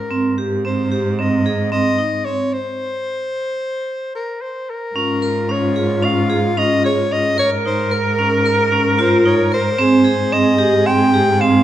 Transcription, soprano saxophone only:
0.00 0.38 A#4 medium
0.66 1.21 C5 medium
1.20 1.71 D#5 medium
1.72 2.26 D#5 medium
2.25 2.54 C#5 medium
2.53 4.14 C5 medium
4.15 4.43 A#4 medium
4.42 4.71 C5 medium
4.70 5.53 A#4 medium
5.51 6.06 C#5 medium
6.05 6.60 F5 medium
6.58 6.84 D#5 loud
6.85 7.14 C#5 medium
7.12 7.38 D#5 loud
7.39 7.51 C#5 loud
7.66 7.95 C5 medium
7.93 8.72 A#4 medium
9.00 9.24 C5 medium
9.26 9.50 C#5 medium
9.54 10.34 C5 medium
10.33 10.88 D#5 medium
10.87 11.42 G5 loud
11.41 11.63 F5 loud

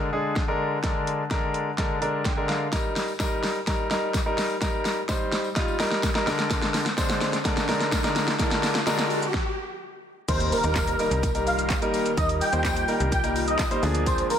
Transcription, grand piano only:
0.12 0.41 D3 medium
0.12 0.41 G#3 medium
0.12 0.41 D4 medium
0.12 0.41 G#4 loud
0.48 0.77 D3 medium
0.48 0.77 G#3 medium
0.48 0.77 D4 medium
0.48 0.77 A#4 loud
0.83 1.22 D3 medium
0.83 1.22 G#3 medium
0.83 1.22 D4 medium
0.83 1.22 A#4 medium
1.31 1.69 D3 medium
1.31 1.69 G#3 medium
1.31 1.69 D4 medium
1.31 1.69 A#4 loud
1.78 1.97 D3 medium
1.78 1.97 G#3 medium
1.78 1.97 D4 medium
1.78 1.97 A#4 loud
2.01 2.30 D3 medium
2.01 2.30 G#3 medium
2.01 2.30 D4 medium
2.01 2.30 A#4 medium
2.01 2.24 A#5 medium
2.25 2.47 G5 medium
2.37 2.66 D3 medium
2.37 2.66 G#3 medium
2.37 2.66 D4 medium
2.37 2.66 A#4 loud
2.49 2.71 F5 medium
2.72 3.11 G3 medium
2.72 3.11 D#4 medium
2.72 3.11 A#4 medium
3.20 3.58 G3 medium
3.20 3.58 D#4 medium
3.20 3.58 A#4 loud
3.67 3.86 G3 medium
3.67 3.86 D#4 medium
3.67 3.86 A#4 loud
3.90 4.19 G3 medium
3.90 4.19 D#4 medium
3.90 4.19 A#4 loud
4.26 4.55 G3 medium
4.26 4.55 D#4 medium
4.26 4.55 A#4 loud
4.61 4.99 G3 medium
4.61 5.00 D#4 medium
4.61 5.00 A#4 loud
5.09 5.47 G3 medium
5.09 5.47 D#4 medium
5.09 5.47 C5 loud
5.56 5.75 G3 medium
5.56 5.75 D#4 medium
5.56 5.75 F4 loud
5.79 6.08 G3 medium
5.79 6.08 D#4 medium
5.79 6.08 A#4 loud
6.15 6.27 G3 medium
6.15 6.27 D#4 medium
6.15 6.26 A#4 loud
6.27 6.84 D3 loud
6.27 6.84 G#3 medium
6.27 6.84 D4 medium
6.27 6.84 A#4 loud
6.97 7.36 D3 medium
6.97 7.36 G#3 medium
6.97 7.36 D4 medium
6.97 7.36 C5 loud
7.45 7.64 D3 medium
7.45 7.64 G#3 medium
7.45 7.64 D4 medium
7.45 7.64 A#4 loud
7.68 7.97 D3 medium
7.68 7.97 G#3 medium
7.68 7.97 D4 medium
7.68 7.97 A#4 loud
8.04 8.33 D3 medium
8.04 8.33 G#3 medium
8.04 8.33 D4 medium
8.04 8.33 A#4 loud
8.39 8.78 D3 medium
8.39 8.78 G#3 medium
8.39 8.78 D4 medium
8.39 8.78 A#4 loud
8.87 9.25 D3 medium
8.87 9.25 G#3 medium
8.87 9.25 D4 medium
8.87 9.25 A#4 loud
10.28 10.57 G3 medium
10.28 10.57 A#3 medium
10.28 10.57 D#4 medium
10.28 10.57 A#4 medium
10.64 10.92 G3 medium
10.64 10.92 A#3 medium
10.64 10.93 D#4 medium
10.64 10.93 A#4 medium
10.99 11.28 G3 medium
10.99 11.28 A#3 medium
10.99 11.28 D#4 medium
10.99 11.28 A#4 medium
11.35 11.73 G3 medium
11.35 11.73 A#3 medium
11.35 11.73 D#4 medium
11.35 11.73 A#4 medium
11.82 12.10 G3 medium
11.82 12.11 A#3 medium
11.82 12.11 D#4 medium
11.82 12.11 A#4 loud
12.17 12.46 G3 medium
12.17 12.46 A#3 medium
12.17 12.46 D#4 medium
12.17 12.46 A#4 medium
12.53 12.81 G3 medium
12.53 12.81 A#3 medium
12.53 12.82 D#4 medium
12.53 12.82 C5 medium
12.88 13.17 G3 medium
12.88 13.17 A#3 medium
12.88 13.17 D#4 medium
12.88 13.17 A#4 medium
13.23 13.62 G3 medium
13.23 13.62 A#3 medium
13.23 13.62 D#4 medium
13.23 13.62 A#4 medium
13.71 13.83 G3 loud
13.71 13.81 A#3 medium
13.71 13.83 D#4 medium
13.71 13.83 C5 loud
13.82 14.30 F3 loud
13.82 14.30 A#3 medium
13.82 14.30 D4 medium
13.82 14.31 G#4 loud

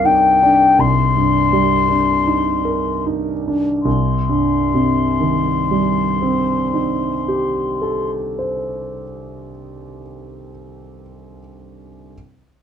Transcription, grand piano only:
0.00 0.76 C2 soft
0.00 1.17 G2 soft
0.00 1.53 G3 soft
0.00 0.43 D4 soft
0.00 0.05 D#4 soft
0.00 0.28 A#4 soft
0.05 0.65 D#4 soft
0.43 1.02 D4 soft
0.79 3.81 C2 soft
1.17 1.74 G2 soft
1.53 2.10 G3 soft
1.89 2.49 D4 soft
2.27 2.89 D#4 soft
2.65 3.31 A#4 soft
3.06 3.71 D#4 soft
3.48 3.86 D4 soft
3.85 8.14 C2 soft
4.29 8.58 G2 soft
4.74 9.03 C3 soft
5.21 9.50 D#3 soft
5.71 10.00 G3 soft
6.22 10.51 C4 soft
6.74 11.03 D#4 soft
7.28 11.39 G4 soft
7.82 11.38 A4 soft
8.39 11.39 C5 soft

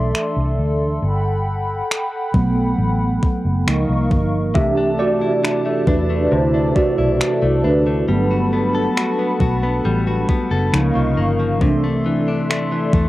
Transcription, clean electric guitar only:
4.55 6.31 C3 medium
4.77 5.43 D4 medium
4.99 5.65 A3 medium
5.21 6.97 E4 medium
5.44 5.87 D4 medium
5.66 6.10 A3 medium
5.88 6.54 D4 medium
6.10 6.76 A3 medium
6.32 8.17 C3 medium
6.54 7.20 D4 medium
6.76 7.42 A3 medium
6.98 8.17 E4 medium
7.20 7.64 D4 medium
7.42 7.86 A3 medium
7.64 8.52 D4 medium
7.87 8.08 A3 medium
8.08 9.84 G3 medium
8.31 8.96 F#4 medium
8.53 9.18 B3 medium
8.75 10.50 A4 medium
8.97 9.40 F#4 medium
9.19 9.62 B3 medium
9.41 10.06 F#4 medium
9.63 10.28 B3 medium
9.85 10.82 G3 medium
10.07 10.82 F#4 medium
10.29 10.82 B3 medium
10.51 10.82 A4 medium
10.73 11.61 C#3 medium
10.95 11.38 F3 medium
11.17 11.70 A#3 medium
11.40 11.70 F3 medium
11.62 13.09 C3 medium
11.84 12.49 A3 medium
12.06 12.71 E3 medium
12.28 13.09 D4 medium
12.50 12.94 A3 medium
12.72 13.09 E3 medium
12.94 13.09 A3 medium

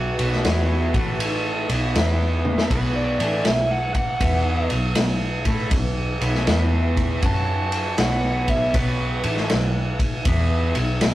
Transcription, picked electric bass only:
0.00 0.16 B1 medium
0.19 0.44 B1 medium
0.46 0.91 E2 medium
0.94 1.66 A1 medium
1.70 1.94 B1 medium
1.95 2.67 E2 medium
2.71 3.17 B1 medium
3.20 3.44 A1 medium
3.46 3.92 B1 medium
4.21 4.67 E2 medium
4.71 4.95 B1 medium
4.96 5.42 B1 medium
5.45 5.70 A2 medium
5.71 6.18 B1 medium
6.21 6.46 B1 loud
6.47 7.19 E2 medium
7.23 7.95 F#2 medium
7.99 8.70 B1 medium
8.74 9.20 B1 medium
9.24 9.48 A1 loud
9.50 9.96 B1 medium
10.26 10.72 E2 medium
10.76 11.00 B1 medium
11.02 11.14 B1 medium

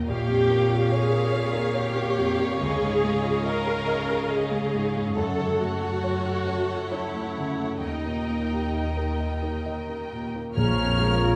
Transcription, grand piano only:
0.00 0.10 A#2 soft
0.00 0.10 A#3 soft
0.00 0.10 A#4 soft
0.08 2.57 A#1 medium
0.28 0.62 F2 soft
0.50 0.84 A#3 soft
0.70 1.04 F4 soft
0.92 1.25 C#5 soft
1.12 1.46 A#4 soft
1.32 1.67 C#5 soft
1.53 1.88 A#4 soft
1.74 2.09 C#5 soft
1.96 2.30 A#3 soft
2.18 2.52 F2 soft
2.39 2.61 A#3 soft
2.61 5.13 C#2 medium
2.83 3.16 G#2 soft
3.04 3.37 G#3 soft
3.24 3.58 F4 soft
3.46 3.79 D#5 soft
3.66 4.00 G#4 soft
3.88 4.22 D#5 soft
4.10 4.44 G#4 soft
4.30 4.65 D#5 soft
4.51 4.86 G#3 soft
4.74 5.08 G#2 soft
4.96 5.17 G#3 soft
5.17 7.78 F#2 medium
5.38 5.73 C#3 soft
5.60 5.95 A3 soft
5.81 6.16 F#4 soft
6.04 6.39 C#5 soft
6.25 6.60 A4 soft
6.47 6.82 C#5 soft
6.69 7.05 A4 soft
6.92 7.27 C#5 soft
7.15 7.50 A3 soft
7.38 7.73 C#3 soft
7.59 7.82 A3 soft
7.83 10.51 D#2 soft
8.07 8.43 A#2 soft
8.30 8.65 A#3 soft
8.52 8.88 G4 soft
8.75 9.10 D#5 soft
8.97 9.33 A#4 soft
9.20 9.56 D#5 soft
9.43 9.79 A#4 soft
9.66 10.02 D#5 soft
9.89 10.25 A#3 soft
10.12 10.47 A#2 soft
10.36 10.56 A#3 soft
10.57 11.36 A#1 soft
10.81 11.14 F2 soft
11.01 11.35 G#3 soft
11.24 11.36 F4 soft

